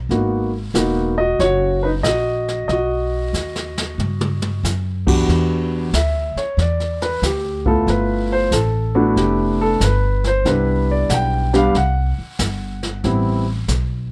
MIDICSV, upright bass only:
0, 0, Header, 1, 3, 480
1, 0, Start_track
1, 0, Tempo, 647249
1, 73, Time_signature, 4, 2, 24, 8
1, 10470, End_track
2, 0, Start_track
2, 0, Title_t, "Upright bass"
2, 0, Program_c, 0, 32
2, 69, Note_on_c, 0, 32, 68
2, 536, Note_off_c, 0, 32, 0
2, 548, Note_on_c, 0, 28, 80
2, 1016, Note_off_c, 0, 28, 0
2, 1033, Note_on_c, 0, 30, 71
2, 1498, Note_off_c, 0, 30, 0
2, 1513, Note_on_c, 0, 34, 73
2, 1978, Note_off_c, 0, 34, 0
2, 1996, Note_on_c, 0, 35, 68
2, 2460, Note_off_c, 0, 35, 0
2, 2470, Note_on_c, 0, 39, 65
2, 2937, Note_off_c, 0, 39, 0
2, 2952, Note_on_c, 0, 43, 69
2, 3418, Note_off_c, 0, 43, 0
2, 3437, Note_on_c, 0, 42, 74
2, 3901, Note_off_c, 0, 42, 0
2, 3918, Note_on_c, 0, 40, 79
2, 4382, Note_off_c, 0, 40, 0
2, 4399, Note_on_c, 0, 38, 75
2, 4697, Note_off_c, 0, 38, 0
2, 4873, Note_on_c, 0, 40, 66
2, 5339, Note_off_c, 0, 40, 0
2, 5355, Note_on_c, 0, 38, 82
2, 5820, Note_off_c, 0, 38, 0
2, 5836, Note_on_c, 0, 31, 72
2, 6301, Note_off_c, 0, 31, 0
2, 6315, Note_on_c, 0, 33, 77
2, 6780, Note_off_c, 0, 33, 0
2, 6794, Note_on_c, 0, 29, 68
2, 7260, Note_off_c, 0, 29, 0
2, 7271, Note_on_c, 0, 31, 89
2, 7738, Note_off_c, 0, 31, 0
2, 7750, Note_on_c, 0, 36, 73
2, 8217, Note_off_c, 0, 36, 0
2, 8226, Note_on_c, 0, 35, 84
2, 8695, Note_off_c, 0, 35, 0
2, 8710, Note_on_c, 0, 36, 74
2, 9012, Note_off_c, 0, 36, 0
2, 9189, Note_on_c, 0, 31, 79
2, 9657, Note_off_c, 0, 31, 0
2, 9671, Note_on_c, 0, 33, 72
2, 10137, Note_off_c, 0, 33, 0
2, 10147, Note_on_c, 0, 35, 75
2, 10470, Note_off_c, 0, 35, 0
2, 10470, End_track
3, 0, Start_track
3, 0, Title_t, "Muted upright bass strokes"
3, 4716, Note_on_c, 9, 29, 35
3, 4790, Note_off_c, 9, 29, 0
3, 9036, Note_on_c, 9, 29, 39
3, 9110, Note_off_c, 9, 29, 0
3, 10470, End_track
0, 0, End_of_file